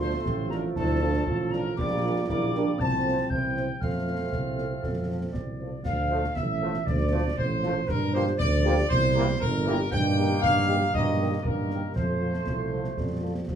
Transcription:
Already playing: tuba D2, trombone section F3 A3, euphonium F4, woodwind section F4 A4
0.00 french horn section D4 F4 A4, trumpet section C5, piccolo C6
0.25 tuba A1, euphonium G4, concert bass drum, snare
0.50 french horn section D4 F4 A4, euphonium F4, trumpet section A#4, piccolo A#5, snare
0.76 tuba D2, euphonium E4, trumpet section A4, piccolo A5, concert bass drum, snare
1.01 french horn section D4 F4 A4, euphonium D4
1.27 tuba A1, euphonium F4, concert bass drum
1.51 french horn section D4 F4 A4, trumpet section A#4, piccolo A#5, snare
1.77 tuba A#1, trombone section G3 A#3, euphonium G4, woodwind section G4 A#4, trumpet section D5, piccolo D6, concert bass drum, snare, crash
2.04 french horn section D4 G4 A#4, euphonium F4
2.27 tuba A#1, trombone section G3 A#3, euphonium E4, trumpet section D5, piccolo D6, concert bass drum, snare
2.54 euphonium D4, french horn section D4 G4 A#4, snare
2.78 tuba C2, trombone section F3 C4, euphonium C4, woodwind section F4 C5, trumpet section A5, piccolo A6, concert bass drum, snare
3.06 french horn section C4 F4 A4
3.29 tuba C2, trombone section E3 C4, woodwind section E4, trumpet section G5, piccolo G6, concert bass drum
3.57 french horn section C4 E4 C5, snare
3.80 tuba F2, euphonium A3, trombone section A3 C4, woodwind section A4 C5, trumpet section F5, piccolo F6, concert bass drum, snare
4.08 french horn section A3 F4 C5
4.32 tuba C2, woodwind section A4, concert bass drum, snare
4.58 french horn section A3 F4 C5, snare
4.82 tuba F2, woodwind section A4, concert bass drum, snare
5.09 french horn section A3 F4 C5
5.33 tuba C2, woodwind section D5, concert bass drum, snare
5.60 french horn section A3 F4 C5
5.84 tuba D2, trumpet section F5, woodwind section F5, concert bass drum, snare, crash
6.10 trombone section F3 A3, french horn section A3 F4 A4
6.24 snare
6.34 tuba A1, trumpet section E5, woodwind section E5, concert bass drum, snare
6.60 trombone section F3 A3, french horn section A3 F4 A4
6.74 snare
6.86 tuba D2, woodwind section D5, trumpet section D5, concert bass drum, snare
7.11 trombone section F3 A3, french horn section A3 F4 A4
7.37 tuba A1, trumpet section C5, woodwind section C5, concert bass drum
7.63 trombone section F3 A3, french horn section A3 F4 A4, snare
7.88 tuba G2, trumpet section A#4, woodwind section A#4, concert bass drum, snare
8.13 trombone section F3 A#3, french horn section A#3 F4 G4, trumpet section C5, woodwind section C5
8.27 snare
8.37 tuba D2, woodwind section D5, trumpet section D5, concert bass drum, snare
8.64 trombone section F3 A#3, french horn section A#3 F4 G4
8.78 snare
8.89 tuba C2, trumpet section C5, woodwind section C5, concert bass drum, snare
9.15 trombone section E3 A#3, french horn section A#3 E4 G4
9.40 tuba G1, trumpet section A#4, woodwind section A#4, concert bass drum
9.65 trombone section E3 A#3, french horn section A#3 E4 G4, snare
9.91 tuba G2, trombone section D#3 A#3, trumpet section G5, woodwind section G5, concert bass drum, snare, crash
10.18 french horn section A#3 D#4 G4
10.31 snare
10.41 tuba G2, woodwind section F5, trumpet section F5, concert bass drum, snare
10.68 french horn section A#3 D#4 G4
10.80 snare
10.93 tuba G2, trombone section D#3 A#3, trumpet section D#5, woodwind section D#5, concert bass drum, snare
11.18 french horn section A#3 D#4 G4
11.43 tuba G2, trombone section D#3 A#3, trumpet section A#4, woodwind section A#4, concert bass drum
11.70 french horn section A#3 D#4 G4, snare
11.95 tuba F2, trombone section F3 A3, trumpet section C5, woodwind section C5, concert bass drum, snare
12.21 french horn section C4 F4 A4
12.34 snare
12.46 tuba C2, euphonium A3, concert bass drum, snare
12.72 french horn section C4 F4 A4
12.84 snare
12.97 tuba F2, euphonium G3, concert bass drum, snare
13.23 french horn section C4 F4 A4
13.48 tuba C2, euphonium F3, concert bass drum, snare

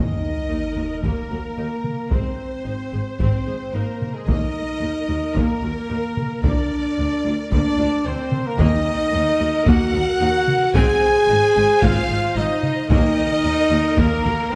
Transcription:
Already playing: timpani D#3, viola section A#3 A#4, french horn section D#4, violin section D#5, trumpet section D#5, sub drop
0.50 double bass section D#2, cello section D#2, viola section D#4
0.77 double bass section D#2, cello section D#2, viola section F#4
1.03 double bass section D#2, cello section D#2, viola section A#3, french horn section A#3, trumpet section A#4, violin section A#4, taiko
1.30 double bass section D#2, cello section D#2, viola section F#4
1.57 double bass section D#2, cello section D#2, viola section D#4
1.85 taiko mid
2.11 double bass section G#1, cello section G#2, viola section C4 C5, french horn section C4, violin section C5, trumpet section C5, taiko
2.65 double bass section G#1, cello section G#2, viola section D#4
2.92 double bass section G#1, cello section G#2, viola section G#4
3.20 double bass section G#1, cello section G#2, french horn section C4, viola section C4, trumpet section C5, violin section C5, taiko
3.46 double bass section G#1, cello section G#2, viola section G#4
3.73 double bass section G#1, cello section G#2, french horn section A#3, viola section D#4, trumpet section A#4, violin section A#4
4.02 taiko mid
4.14 french horn section G#3, violin section G#4, trumpet section G#4
4.27 cello section D#2, double bass section D#2, viola section A#3 A#4, french horn section D#4, violin section D#5, trumpet section D#5, taiko
4.81 cello section D#2, double bass section D#2, viola section D#4
5.08 double bass section D#2, cello section D#2, viola section F#4
5.36 cello section D#2, double bass section D#2, viola section A#3, french horn section A#3, violin section A#4, trumpet section A#4, taiko
5.62 cello section D#2, double bass section D#2, viola section F#4
5.89 double bass section D#2, cello section D#2, viola section D#4
6.17 taiko mid
6.43 double bass section D2, cello section D2, viola section A#3, french horn section D4, violin section D5, trumpet section D5, taiko
6.98 double bass section D2, cello section D2, viola section D4
7.25 double bass section D2, cello section D2, viola section F4
7.52 double bass section D2, cello section D2, viola section A#3, french horn section D4, violin section D5, trumpet section D5, taiko
7.78 cello section D2, double bass section D2, viola section F4
8.05 cello section D2, double bass section D2, french horn section C4, viola section D4, violin section C5, trumpet section C5
8.32 taiko mid
8.46 french horn section A#3, violin section A#4, trumpet section A#4
8.59 cello section D#2, double bass section D#2, timpani D#3, viola section A#3 A#4, french horn section D#4, trumpet section D#5, violin section D#5, taiko
9.13 cello section D#2, double bass section D#2, viola section D#4
9.40 cello section D#2, double bass section D#2, viola section F#4
9.66 double bass section D#2, cello section D#2, viola section A#3, french horn section F#4, violin section F#5, trumpet section F#5, taiko
9.93 cello section D#2, double bass section D#2, viola section F#4
10.21 double bass section D#2, cello section D#2, viola section D#4
10.47 taiko mid
10.74 double bass section G#1, cello section G#2, viola section C4 C5, french horn section G#4, violin section G#5, trumpet section G#5, taiko
11.29 double bass section G#1, cello section G#2, viola section D#4
11.55 double bass section G#1, cello section G#2, viola section G#4
11.82 double bass section G#1, cello section G#2, viola section C4, french horn section F4, violin section F5, trumpet section F5, taiko
12.09 double bass section G#1, cello section G#2, viola section G#4
12.36 double bass section G#1, cello section G#2, viola section D#4, french horn section D#4, violin section D#5, trumpet section D#5
12.63 taiko mid
12.90 cello section D#2, double bass section D#2, timpani D#3, viola section A#3 A#4, french horn section D#4, trumpet section D#5, violin section D#5, taiko
13.44 cello section D#2, double bass section D#2, viola section D#4
13.71 cello section D#2, double bass section D#2, viola section F#4
13.97 cello section D#2, double bass section D#2, viola section A#3, french horn section A#3, violin section A#4, trumpet section A#4, taiko
14.25 cello section D#2, double bass section D#2, viola section F#4
14.52 cello section D#2, french horn section C4, viola section D#4, violin section C5

